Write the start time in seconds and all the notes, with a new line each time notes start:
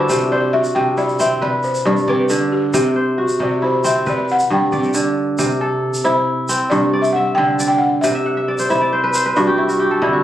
Already playing: G2 D3 E4 F#4 G4 A4 B4 C5 D5 E5
0.00 D4
0.09 C3, shaker
0.21 shaker
0.32 C5 D5
0.53 F#4 E5
0.64 shaker
0.75 C3 G5
0.97 E4 D5, shaker
1.09 shaker
1.19 C3 C4 E5, shaker
1.42 C3 B4 D5
1.63 C5, shaker
1.75 shaker
1.85 G2 C3 D5
1.97 shaker
2.08 C3 B4 D5
2.29 D3 A4, shaker
2.52 G4
2.73 C3 G4, shaker
2.96 C5
3.18 F#4
3.28 shaker
3.39 C3 D5
3.62 E4 C5
3.84 C3 C4 E5, shaker
4.06 C3 B4 D5, shaker
4.28 F#5, shaker
4.39 shaker
4.50 G2 C3 G5
4.72 C3 D5, shaker
4.83 shaker
4.94 D3, shaker
5.39 C3, shaker
5.61 A4
5.94 shaker
6.04 C3 E4 C5
6.49 C4, shaker
6.70 G2 C3 D5, shaker
6.93 D5
7.02 E5, shaker
7.13 E5 F#5
7.35 C3 D3 G5
7.60 D5, shaker
7.68 G5
7.78 F#5
8.01 C3 E5 F#5, shaker
8.15 E5
8.26 F#5
8.37 E5
8.48 D5
8.58 C5, shaker
8.69 C3 E4 C5 E5, shaker
8.81 D5
8.93 C5
9.04 B4
9.14 C5, shaker
9.26 B4
9.36 G2 C3 F#4 D5, shaker
9.47 G4
9.58 E4
9.69 F#4, shaker
9.80 G4
9.91 A4
10.02 C3 D3 E4
10.13 F#4